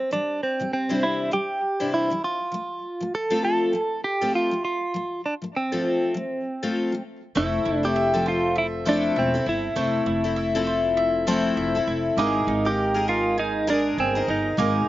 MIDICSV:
0, 0, Header, 1, 5, 480
1, 0, Start_track
1, 0, Tempo, 603015
1, 89, Time_signature, 4, 2, 24, 8
1, 11848, End_track
2, 0, Start_track
2, 0, Title_t, "Mandolin"
2, 0, Program_c, 0, 25
2, 5854, Note_on_c, 0, 57, 71
2, 6094, Note_on_c, 0, 64, 52
2, 6335, Note_on_c, 0, 76, 63
2, 6574, Note_on_c, 0, 72, 56
2, 6801, Note_off_c, 0, 76, 0
2, 6811, Note_on_c, 0, 76, 56
2, 7045, Note_off_c, 0, 72, 0
2, 7054, Note_on_c, 0, 72, 61
2, 7283, Note_off_c, 0, 76, 0
2, 7292, Note_on_c, 0, 76, 58
2, 7523, Note_off_c, 0, 64, 0
2, 7532, Note_on_c, 0, 64, 52
2, 7760, Note_off_c, 0, 57, 0
2, 7770, Note_on_c, 0, 57, 68
2, 8000, Note_off_c, 0, 64, 0
2, 8009, Note_on_c, 0, 64, 59
2, 8240, Note_off_c, 0, 76, 0
2, 8250, Note_on_c, 0, 76, 60
2, 8482, Note_off_c, 0, 72, 0
2, 8491, Note_on_c, 0, 72, 57
2, 8723, Note_off_c, 0, 76, 0
2, 8733, Note_on_c, 0, 76, 62
2, 8962, Note_off_c, 0, 72, 0
2, 8972, Note_on_c, 0, 72, 58
2, 9201, Note_off_c, 0, 76, 0
2, 9211, Note_on_c, 0, 76, 60
2, 9442, Note_off_c, 0, 64, 0
2, 9452, Note_on_c, 0, 64, 52
2, 9689, Note_off_c, 0, 57, 0
2, 9692, Note_on_c, 0, 58, 73
2, 9747, Note_off_c, 0, 76, 0
2, 9748, Note_off_c, 0, 64, 0
2, 9748, Note_off_c, 0, 72, 0
2, 9933, Note_on_c, 0, 63, 58
2, 10410, Note_on_c, 0, 70, 57
2, 10649, Note_on_c, 0, 80, 64
2, 10879, Note_off_c, 0, 70, 0
2, 10888, Note_on_c, 0, 70, 58
2, 11122, Note_off_c, 0, 80, 0
2, 11132, Note_on_c, 0, 80, 55
2, 11361, Note_off_c, 0, 63, 0
2, 11370, Note_on_c, 0, 63, 51
2, 11599, Note_off_c, 0, 58, 0
2, 11609, Note_on_c, 0, 58, 70
2, 11838, Note_off_c, 0, 63, 0
2, 11848, Note_off_c, 0, 58, 0
2, 11848, Note_off_c, 0, 70, 0
2, 11848, Note_off_c, 0, 80, 0
2, 11848, End_track
3, 0, Start_track
3, 0, Title_t, "Clean electric guitar"
3, 0, Program_c, 1, 27
3, 0, Note_on_c, 1, 60, 70
3, 97, Note_off_c, 1, 60, 0
3, 101, Note_on_c, 1, 62, 87
3, 319, Note_off_c, 1, 62, 0
3, 344, Note_on_c, 1, 60, 70
3, 574, Note_off_c, 1, 60, 0
3, 584, Note_on_c, 1, 60, 80
3, 821, Note_on_c, 1, 64, 71
3, 824, Note_off_c, 1, 60, 0
3, 1057, Note_off_c, 1, 64, 0
3, 1061, Note_on_c, 1, 67, 87
3, 1540, Note_off_c, 1, 67, 0
3, 1543, Note_on_c, 1, 64, 79
3, 1783, Note_off_c, 1, 64, 0
3, 1786, Note_on_c, 1, 65, 79
3, 2503, Note_off_c, 1, 65, 0
3, 2506, Note_on_c, 1, 69, 89
3, 2733, Note_off_c, 1, 69, 0
3, 2742, Note_on_c, 1, 69, 81
3, 3186, Note_off_c, 1, 69, 0
3, 3218, Note_on_c, 1, 67, 81
3, 3439, Note_off_c, 1, 67, 0
3, 3466, Note_on_c, 1, 65, 80
3, 3689, Note_off_c, 1, 65, 0
3, 3698, Note_on_c, 1, 65, 71
3, 4144, Note_off_c, 1, 65, 0
3, 4184, Note_on_c, 1, 62, 69
3, 4247, Note_off_c, 1, 62, 0
3, 4430, Note_on_c, 1, 60, 65
3, 5589, Note_off_c, 1, 60, 0
3, 5867, Note_on_c, 1, 64, 91
3, 6248, Note_on_c, 1, 67, 96
3, 6255, Note_off_c, 1, 64, 0
3, 6588, Note_off_c, 1, 67, 0
3, 6593, Note_on_c, 1, 65, 82
3, 6828, Note_off_c, 1, 65, 0
3, 6831, Note_on_c, 1, 64, 88
3, 6893, Note_off_c, 1, 64, 0
3, 7074, Note_on_c, 1, 62, 79
3, 7309, Note_off_c, 1, 62, 0
3, 7313, Note_on_c, 1, 60, 79
3, 7526, Note_off_c, 1, 60, 0
3, 7553, Note_on_c, 1, 64, 81
3, 8949, Note_off_c, 1, 64, 0
3, 9703, Note_on_c, 1, 63, 89
3, 10081, Note_on_c, 1, 67, 97
3, 10092, Note_off_c, 1, 63, 0
3, 10416, Note_off_c, 1, 67, 0
3, 10420, Note_on_c, 1, 65, 83
3, 10638, Note_off_c, 1, 65, 0
3, 10661, Note_on_c, 1, 63, 93
3, 10901, Note_off_c, 1, 63, 0
3, 10904, Note_on_c, 1, 62, 86
3, 11120, Note_off_c, 1, 62, 0
3, 11144, Note_on_c, 1, 60, 84
3, 11382, Note_off_c, 1, 60, 0
3, 11385, Note_on_c, 1, 63, 75
3, 11848, Note_off_c, 1, 63, 0
3, 11848, End_track
4, 0, Start_track
4, 0, Title_t, "Twelve-string acoustic guitar"
4, 0, Program_c, 2, 25
4, 88, Note_on_c, 2, 48, 53
4, 99, Note_on_c, 2, 52, 57
4, 107, Note_on_c, 2, 55, 58
4, 291, Note_off_c, 2, 48, 0
4, 296, Note_off_c, 2, 52, 0
4, 300, Note_off_c, 2, 55, 0
4, 474, Note_on_c, 2, 48, 43
4, 481, Note_on_c, 2, 52, 46
4, 489, Note_on_c, 2, 55, 45
4, 657, Note_off_c, 2, 48, 0
4, 660, Note_off_c, 2, 52, 0
4, 664, Note_off_c, 2, 55, 0
4, 711, Note_on_c, 2, 72, 61
4, 717, Note_on_c, 2, 64, 57
4, 720, Note_on_c, 2, 62, 54
4, 721, Note_on_c, 2, 55, 49
4, 723, Note_on_c, 2, 48, 49
4, 723, Note_on_c, 2, 52, 54
4, 1035, Note_off_c, 2, 48, 0
4, 1042, Note_off_c, 2, 52, 0
4, 1045, Note_on_c, 2, 48, 49
4, 1049, Note_off_c, 2, 72, 0
4, 1050, Note_off_c, 2, 55, 0
4, 1051, Note_on_c, 2, 52, 54
4, 1052, Note_off_c, 2, 64, 0
4, 1054, Note_off_c, 2, 62, 0
4, 1060, Note_on_c, 2, 55, 60
4, 1250, Note_off_c, 2, 48, 0
4, 1253, Note_off_c, 2, 52, 0
4, 1257, Note_off_c, 2, 55, 0
4, 1432, Note_on_c, 2, 72, 56
4, 1434, Note_on_c, 2, 64, 59
4, 1437, Note_on_c, 2, 62, 52
4, 1441, Note_on_c, 2, 52, 48
4, 1441, Note_on_c, 2, 55, 46
4, 1444, Note_on_c, 2, 48, 43
4, 1665, Note_off_c, 2, 48, 0
4, 1673, Note_off_c, 2, 52, 0
4, 1674, Note_off_c, 2, 72, 0
4, 1674, Note_on_c, 2, 48, 43
4, 1675, Note_off_c, 2, 64, 0
4, 1676, Note_off_c, 2, 62, 0
4, 1678, Note_off_c, 2, 55, 0
4, 1682, Note_on_c, 2, 52, 52
4, 1690, Note_on_c, 2, 55, 46
4, 1857, Note_off_c, 2, 48, 0
4, 1861, Note_off_c, 2, 52, 0
4, 1865, Note_off_c, 2, 55, 0
4, 2003, Note_on_c, 2, 53, 54
4, 2023, Note_on_c, 2, 57, 63
4, 2209, Note_off_c, 2, 53, 0
4, 2219, Note_off_c, 2, 57, 0
4, 2392, Note_on_c, 2, 53, 48
4, 2407, Note_on_c, 2, 57, 52
4, 2577, Note_off_c, 2, 53, 0
4, 2584, Note_off_c, 2, 57, 0
4, 2630, Note_on_c, 2, 69, 63
4, 2633, Note_on_c, 2, 65, 56
4, 2636, Note_on_c, 2, 60, 57
4, 2639, Note_on_c, 2, 57, 52
4, 2640, Note_on_c, 2, 53, 46
4, 2959, Note_off_c, 2, 53, 0
4, 2969, Note_off_c, 2, 69, 0
4, 2969, Note_on_c, 2, 53, 45
4, 2971, Note_off_c, 2, 65, 0
4, 2972, Note_off_c, 2, 60, 0
4, 2974, Note_off_c, 2, 57, 0
4, 2983, Note_on_c, 2, 57, 55
4, 3172, Note_off_c, 2, 53, 0
4, 3179, Note_off_c, 2, 57, 0
4, 3353, Note_on_c, 2, 69, 52
4, 3355, Note_on_c, 2, 65, 55
4, 3361, Note_on_c, 2, 60, 56
4, 3362, Note_on_c, 2, 57, 51
4, 3363, Note_on_c, 2, 53, 48
4, 3583, Note_off_c, 2, 53, 0
4, 3592, Note_on_c, 2, 53, 47
4, 3595, Note_off_c, 2, 69, 0
4, 3596, Note_off_c, 2, 65, 0
4, 3599, Note_off_c, 2, 57, 0
4, 3599, Note_off_c, 2, 60, 0
4, 3609, Note_on_c, 2, 57, 49
4, 3777, Note_off_c, 2, 53, 0
4, 3785, Note_off_c, 2, 57, 0
4, 3933, Note_on_c, 2, 53, 56
4, 3948, Note_on_c, 2, 57, 55
4, 4134, Note_off_c, 2, 53, 0
4, 4142, Note_off_c, 2, 57, 0
4, 4312, Note_on_c, 2, 53, 43
4, 4328, Note_on_c, 2, 57, 48
4, 4497, Note_off_c, 2, 53, 0
4, 4505, Note_off_c, 2, 57, 0
4, 4554, Note_on_c, 2, 69, 60
4, 4557, Note_on_c, 2, 60, 53
4, 4557, Note_on_c, 2, 65, 61
4, 4563, Note_on_c, 2, 57, 48
4, 4565, Note_on_c, 2, 53, 48
4, 4881, Note_off_c, 2, 53, 0
4, 4891, Note_off_c, 2, 69, 0
4, 4891, Note_on_c, 2, 53, 49
4, 4893, Note_off_c, 2, 60, 0
4, 4893, Note_off_c, 2, 65, 0
4, 4896, Note_off_c, 2, 57, 0
4, 4909, Note_on_c, 2, 57, 51
4, 5093, Note_off_c, 2, 53, 0
4, 5103, Note_off_c, 2, 57, 0
4, 5275, Note_on_c, 2, 69, 62
4, 5277, Note_on_c, 2, 65, 59
4, 5278, Note_on_c, 2, 60, 57
4, 5283, Note_on_c, 2, 57, 57
4, 5284, Note_on_c, 2, 53, 54
4, 5501, Note_off_c, 2, 53, 0
4, 5511, Note_on_c, 2, 53, 51
4, 5516, Note_off_c, 2, 69, 0
4, 5517, Note_off_c, 2, 60, 0
4, 5517, Note_off_c, 2, 65, 0
4, 5519, Note_off_c, 2, 57, 0
4, 5528, Note_on_c, 2, 57, 53
4, 5696, Note_off_c, 2, 53, 0
4, 5705, Note_off_c, 2, 57, 0
4, 5850, Note_on_c, 2, 57, 54
4, 5856, Note_on_c, 2, 60, 55
4, 5863, Note_on_c, 2, 64, 64
4, 5866, Note_on_c, 2, 69, 57
4, 6224, Note_off_c, 2, 69, 0
4, 6233, Note_off_c, 2, 64, 0
4, 6234, Note_on_c, 2, 69, 46
4, 6235, Note_off_c, 2, 57, 0
4, 6238, Note_off_c, 2, 60, 0
4, 6242, Note_on_c, 2, 64, 41
4, 6253, Note_on_c, 2, 60, 44
4, 6467, Note_off_c, 2, 69, 0
4, 6473, Note_off_c, 2, 60, 0
4, 6477, Note_on_c, 2, 69, 57
4, 6479, Note_off_c, 2, 64, 0
4, 6483, Note_on_c, 2, 60, 52
4, 6484, Note_on_c, 2, 57, 52
4, 6488, Note_on_c, 2, 53, 51
4, 7038, Note_off_c, 2, 53, 0
4, 7043, Note_off_c, 2, 57, 0
4, 7045, Note_off_c, 2, 60, 0
4, 7047, Note_on_c, 2, 53, 72
4, 7052, Note_off_c, 2, 69, 0
4, 7052, Note_on_c, 2, 57, 70
4, 7055, Note_on_c, 2, 60, 77
4, 7059, Note_on_c, 2, 64, 80
4, 7062, Note_on_c, 2, 69, 78
4, 7423, Note_off_c, 2, 69, 0
4, 7432, Note_off_c, 2, 64, 0
4, 7433, Note_off_c, 2, 53, 0
4, 7433, Note_on_c, 2, 69, 46
4, 7435, Note_off_c, 2, 57, 0
4, 7437, Note_off_c, 2, 60, 0
4, 7442, Note_on_c, 2, 64, 47
4, 7448, Note_on_c, 2, 60, 45
4, 7762, Note_off_c, 2, 60, 0
4, 7766, Note_on_c, 2, 57, 55
4, 7768, Note_off_c, 2, 64, 0
4, 7769, Note_off_c, 2, 69, 0
4, 7771, Note_on_c, 2, 60, 53
4, 7777, Note_on_c, 2, 64, 61
4, 7782, Note_on_c, 2, 69, 56
4, 8142, Note_off_c, 2, 69, 0
4, 8149, Note_off_c, 2, 64, 0
4, 8151, Note_on_c, 2, 69, 59
4, 8152, Note_off_c, 2, 57, 0
4, 8155, Note_off_c, 2, 60, 0
4, 8159, Note_on_c, 2, 64, 49
4, 8168, Note_on_c, 2, 60, 48
4, 8388, Note_off_c, 2, 69, 0
4, 8393, Note_off_c, 2, 64, 0
4, 8395, Note_off_c, 2, 60, 0
4, 8398, Note_on_c, 2, 69, 73
4, 8402, Note_on_c, 2, 64, 59
4, 8405, Note_on_c, 2, 60, 70
4, 8407, Note_on_c, 2, 53, 54
4, 8407, Note_on_c, 2, 57, 54
4, 8960, Note_off_c, 2, 53, 0
4, 8964, Note_off_c, 2, 57, 0
4, 8966, Note_off_c, 2, 60, 0
4, 8968, Note_off_c, 2, 64, 0
4, 8970, Note_on_c, 2, 53, 77
4, 8971, Note_off_c, 2, 69, 0
4, 8974, Note_on_c, 2, 57, 88
4, 8976, Note_on_c, 2, 60, 88
4, 8978, Note_on_c, 2, 64, 85
4, 8981, Note_on_c, 2, 69, 90
4, 9343, Note_off_c, 2, 69, 0
4, 9350, Note_off_c, 2, 64, 0
4, 9352, Note_on_c, 2, 69, 55
4, 9353, Note_off_c, 2, 53, 0
4, 9355, Note_off_c, 2, 57, 0
4, 9356, Note_off_c, 2, 60, 0
4, 9360, Note_on_c, 2, 64, 51
4, 9369, Note_on_c, 2, 60, 49
4, 9689, Note_off_c, 2, 69, 0
4, 9691, Note_on_c, 2, 56, 52
4, 9692, Note_off_c, 2, 64, 0
4, 9693, Note_off_c, 2, 60, 0
4, 9696, Note_on_c, 2, 63, 56
4, 9703, Note_on_c, 2, 68, 63
4, 9705, Note_on_c, 2, 70, 62
4, 10060, Note_off_c, 2, 70, 0
4, 10069, Note_on_c, 2, 70, 46
4, 10074, Note_off_c, 2, 56, 0
4, 10077, Note_off_c, 2, 63, 0
4, 10080, Note_off_c, 2, 68, 0
4, 10086, Note_on_c, 2, 63, 41
4, 10294, Note_off_c, 2, 70, 0
4, 10303, Note_on_c, 2, 70, 59
4, 10304, Note_off_c, 2, 63, 0
4, 10309, Note_on_c, 2, 68, 54
4, 10314, Note_on_c, 2, 63, 50
4, 10318, Note_on_c, 2, 56, 54
4, 10874, Note_off_c, 2, 56, 0
4, 10882, Note_off_c, 2, 68, 0
4, 10884, Note_off_c, 2, 70, 0
4, 10884, Note_on_c, 2, 56, 76
4, 10889, Note_off_c, 2, 63, 0
4, 10892, Note_on_c, 2, 68, 76
4, 10895, Note_on_c, 2, 70, 78
4, 11256, Note_off_c, 2, 70, 0
4, 11264, Note_off_c, 2, 68, 0
4, 11265, Note_on_c, 2, 70, 54
4, 11271, Note_off_c, 2, 56, 0
4, 11274, Note_on_c, 2, 68, 53
4, 11281, Note_on_c, 2, 63, 47
4, 11596, Note_off_c, 2, 63, 0
4, 11599, Note_on_c, 2, 56, 52
4, 11602, Note_off_c, 2, 68, 0
4, 11605, Note_off_c, 2, 70, 0
4, 11606, Note_on_c, 2, 63, 53
4, 11612, Note_on_c, 2, 68, 61
4, 11617, Note_on_c, 2, 70, 62
4, 11848, Note_off_c, 2, 56, 0
4, 11848, Note_off_c, 2, 63, 0
4, 11848, Note_off_c, 2, 68, 0
4, 11848, Note_off_c, 2, 70, 0
4, 11848, End_track
5, 0, Start_track
5, 0, Title_t, "Upright bass"
5, 0, Program_c, 3, 32
5, 5856, Note_on_c, 3, 29, 94
5, 6051, Note_off_c, 3, 29, 0
5, 6098, Note_on_c, 3, 29, 91
5, 7262, Note_off_c, 3, 29, 0
5, 7293, Note_on_c, 3, 28, 82
5, 7489, Note_off_c, 3, 28, 0
5, 7532, Note_on_c, 3, 31, 76
5, 7728, Note_off_c, 3, 31, 0
5, 7772, Note_on_c, 3, 29, 83
5, 7968, Note_off_c, 3, 29, 0
5, 8010, Note_on_c, 3, 29, 83
5, 9177, Note_off_c, 3, 29, 0
5, 9206, Note_on_c, 3, 29, 77
5, 9404, Note_off_c, 3, 29, 0
5, 9449, Note_on_c, 3, 29, 78
5, 9646, Note_off_c, 3, 29, 0
5, 9684, Note_on_c, 3, 32, 92
5, 9883, Note_off_c, 3, 32, 0
5, 9925, Note_on_c, 3, 32, 93
5, 11095, Note_off_c, 3, 32, 0
5, 11125, Note_on_c, 3, 31, 85
5, 11323, Note_off_c, 3, 31, 0
5, 11362, Note_on_c, 3, 31, 88
5, 11562, Note_off_c, 3, 31, 0
5, 11604, Note_on_c, 3, 32, 103
5, 11803, Note_off_c, 3, 32, 0
5, 11848, End_track
0, 0, End_of_file